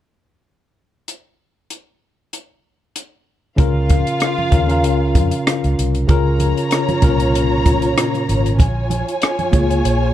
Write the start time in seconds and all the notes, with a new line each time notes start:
1.08 closed hi-hat
1.70 closed hi-hat
2.33 closed hi-hat
2.96 closed hi-hat
3.56 C#2 C#3 C#4 F4 A#4 F5, kick, closed hi-hat, muted conga, low conga
3.89 kick, closed hi-hat, high conga
4.07 closed hi-hat
4.20 cross-stick, closed hi-hat
4.38 high conga
4.51 D#2 C#3 C#4 F4 A#4, kick, closed hi-hat, high conga, low conga
4.68 C#3 C#4 F4 A#4, closed hi-hat
4.83 C#2, closed hi-hat, muted conga
5.15 F2, kick, closed hi-hat, high conga
5.31 closed hi-hat
5.47 cross-stick, closed hi-hat, muted conga
5.64 C#2, closed hi-hat
5.79 C2, closed hi-hat
5.95 closed hi-hat
6.07 C#2 C#3 C#4 F4 A#4 C#5 A#5, kick, closed hi-hat, muted conga, low conga
6.39 closed hi-hat, high conga
6.57 closed hi-hat
6.71 cross-stick, closed hi-hat
6.88 closed hi-hat, muted conga, high conga
7.01 C2 A#2 C#4 F4 A#4, kick, closed hi-hat, high conga, low conga
7.20 closed hi-hat
7.35 closed hi-hat
7.65 kick, closed hi-hat, high conga
7.82 closed hi-hat
7.96 cross-stick, closed hi-hat, muted conga
8.14 closed hi-hat, muted conga
8.29 G#1, closed hi-hat
8.46 closed hi-hat
8.59 A#1 F4 C#5 G#5, kick, closed hi-hat, muted conga, low conga
8.90 closed hi-hat, high conga
9.08 closed hi-hat
9.22 cross-stick, closed hi-hat
9.39 closed hi-hat, high conga
9.52 C#2 A#3 F4 G#4 C#5, kick, closed hi-hat, high conga, low conga
9.71 closed hi-hat
9.85 A#1, closed hi-hat